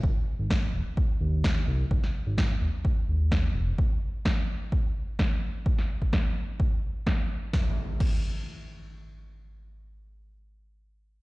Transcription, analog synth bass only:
\new Staff \with { instrumentName = "Analog synth bass" } { \clef bass \time 4/4 \key aes \major \tempo 4 = 128 aes,,16 r8 aes,,8. ees,,16 r8. ees,4 c,8 | aes,,16 r8 aes,,8. ees,,16 r8. ees,4 f,,8 | r1 | r1 |
r1 | r1 | }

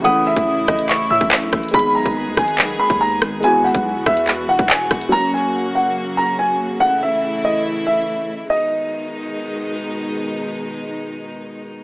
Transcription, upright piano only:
\new Staff \with { instrumentName = "Upright piano" } { \time 4/4 \key gis \minor \tempo 4 = 142 fis''8 e''4 dis''8 r8 e''4. | b''8 ais''4 gis''8 r8 b''8 ais''8 r8 | gis''8 fis''4 e''8 r8 fis''8 gis''8 r8 | ais''8 gis''4 fis''8 r8 ais''8 gis''8 r8 |
fis''8 e''4 dis''8 r8 e''4. | dis''2. r4 | r1 | }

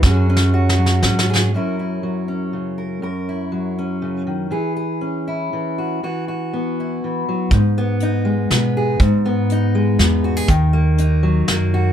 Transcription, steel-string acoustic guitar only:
\new Staff \with { instrumentName = "Steel-string acoustic guitar" } { \time 3/4 \key fis \mixolydian \tempo 4 = 121 << { <fis cis' fis' gis'>8 cis'8 fis'4 cis'8 gis'8 | <fis cis' e' ais'>8 e'4 cis'4 ais'8 | ais'8 e'4 cis'4. | gis'8 gis'4 e'4 fis'8 |
fis'8 fis'4 e'4. | r8 b8 dis'4 b8 gis'8 | r8 b8 dis'4 b8 fis'16 gis'16 | r8 ais8 dis'4 ais8 fis'8 | } \\ { fis,4. fis4. | fis,4 fis4 cis4 | fis,4 fis4 cis8 dis8 | e4 cis'4 e4 |
e4 b4 e8 fis8 | gis,4. gis4. | gis,4. gis4. | dis4. fis4. | } >> }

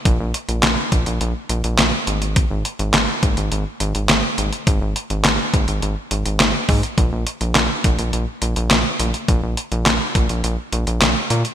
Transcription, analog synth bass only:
\new Staff \with { instrumentName = "Analog synth bass" } { \clef bass \time 4/4 \key aes \mixolydian \tempo 4 = 104 bes,,16 bes,,16 r16 bes,,16 bes,,16 r16 bes,,16 bes,,16 bes,,16 r16 bes,,16 bes,,16 bes,,16 r16 aes,,8~ | aes,,16 aes,,16 r16 aes,,16 aes,,16 r16 aes,,16 aes,,16 aes,,16 r16 aes,,16 aes,,16 aes,,16 r16 aes,,16 r16 | aes,,16 aes,,16 r16 aes,,16 aes,,16 r16 aes,,16 aes,,16 aes,,16 r16 aes,,16 aes,,16 aes,,16 r16 aes,16 r16 | bes,,16 bes,,16 r16 bes,,16 bes,,16 r16 bes,,16 bes,,16 bes,,16 r16 bes,,16 bes,,16 bes,,16 r16 bes,,16 r16 |
bes,,16 bes,,16 r16 bes,,16 bes,,16 r16 bes,,16 bes,,16 bes,,16 r16 bes,,16 bes,,16 bes,,16 r16 bes,16 r16 | }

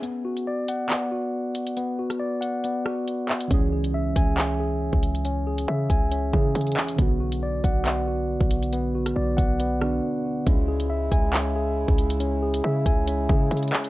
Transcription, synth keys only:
\new Staff \with { instrumentName = "Synth keys" } { \time 4/4 \key cis \phrygian \tempo 4 = 138 r1 | r1 | <e cis' gis'>1~ | <e cis' gis'>2~ <e cis' gis'>8 <e cis' gis'>4. |
<d b fis'>1~ | <d b fis'>2~ <d b fis'>8 <d b d'>4. | r1 | r1 | }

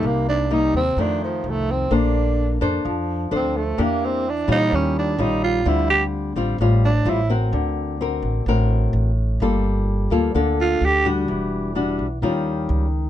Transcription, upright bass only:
\new Staff \with { instrumentName = "Upright bass" } { \clef bass \time 4/4 \key d \minor \tempo 4 = 128 c,4. ees,8 f,4 c,4 | bes,,4. f,8 f,4 d,4 | e,4. bes,8 ees,4 bes,,4 | d,4. a,,8 a,,4 a,,4 |
d,4. a,,8 a,,4 a,,4 | g,,4. d,8 d,4 d,4 | e,,4. b,,8 ees,4 des,4 | }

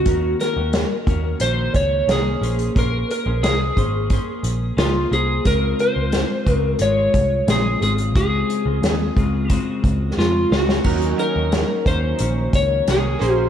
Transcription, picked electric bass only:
\new Staff \with { instrumentName = "Picked electric bass" } { \clef bass \time 4/4 \key ees \dorian \tempo 4 = 89 ees,8 r16 ees,8 r16 ees,8 bes,,8 des,8 c,8 bes,,8 | bes,,8 r16 bes,,16 c,8 aes,,8. r16 bes,,8 des,8 c,8 | des,8 r16 des,8 r16 des,8 aes,,8 c,8 bes,,8 aes,,8 | des,8 r16 des,16 ees,8 des,8. r16 des,8 f,8 des,8 |
ees,8 r16 ees,8 r16 ees,8 bes,,8 des,8 c,8 bes,,8 | }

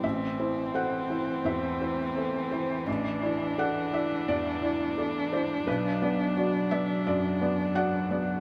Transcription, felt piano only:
\new Staff \with { instrumentName = "Felt piano" } { \time 4/4 \key a \dorian \tempo 4 = 86 << { e''4 fis''4 e''4. r8 | r4 fis''8 e''8 d''4. c''8 | b'4. e''8 d''4 fis''4 | } \\ { a,,8 <e' c''>8 <a' c''>8 <e' c''>8 e,8 <e' c''>8 <a' c''>8 <e' c''>8 | a,,8 <e' d''>8 <a' d''>8 <e' d''>8 e,8 <e' d''>8 <a' d''>8 <e' d''>8 | b,,8 <b d''>8 <fis' d''>8 <b d''>8 fis,8 <b d''>8 <fis' d''>8 <b d''>8 | } >> }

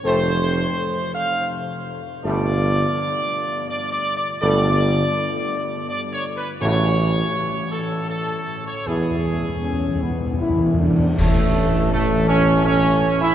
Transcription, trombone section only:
\new Staff \with { instrumentName = "Trombone section" } { \clef bass \time 3/4 \key e \dorian \tempo 4 = 82 <a, a>8 r2 r8 | <b, g>8 r2 r8 | <b, g>8 r2 r8 | <cis e>8 r2 r8 |
<b, e>8 r2 r8 | \key a \major a4 a8 cis'8 cis'8. e'16 | }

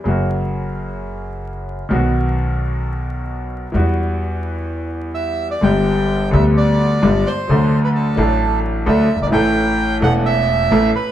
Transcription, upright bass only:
\new Staff \with { instrumentName = "Upright bass" } { \clef bass \time 4/4 \key e \minor \tempo 4 = 130 fis,,2.~ fis,,8. r16 | b,,2.~ b,,8. r16 | e,2.~ e,8. r16 | \key g \major g,,4~ g,,16. r32 d,4~ d,16. r32 g,,16. r8 r32 |
d,4~ d,16. r32 a,,4~ a,,16. r32 d,16. r16 fis,,32 g,,32 aes,,32 | a,,4~ a,,16. r32 e,,4~ e,,16. r32 a,,16. r8 r32 | }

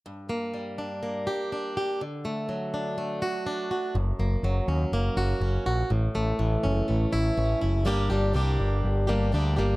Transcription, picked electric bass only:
\new Staff \with { instrumentName = "Picked electric bass" } { \clef bass \time 4/4 \key g \minor \tempo 4 = 123 r1 | r1 | fis,,8 fis,,8 fis,,8 ees,8 fis,,8 fis,,8 fis,,8 ais,,8 | a,,8 a,,8 a,,8 fis,,8 a,,8 a,,8 a,,8 fis,,8 |
g,,8 g,,8 c,8 g,,8 g,,8 g,,8 d,8 g,,8 | }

